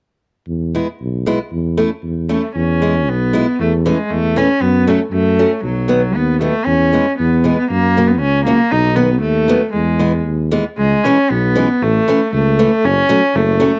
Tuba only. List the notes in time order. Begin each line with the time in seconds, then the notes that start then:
0.47 E2
1.01 B1
1.51 E2
2.03 E2
2.56 E2
3.08 B1
3.60 E2
4.10 E2
4.62 F#2
5.11 F#2
5.64 B1
6.16 D#2
6.67 E2
7.19 E2
7.70 F#2
8.21 C#2
8.72 B1
9.22 D#2
9.74 E2
10.26 D#2
10.78 C#2
11.30 B1
11.82 A1
12.33 C#2
12.84 F#1
13.34 F#1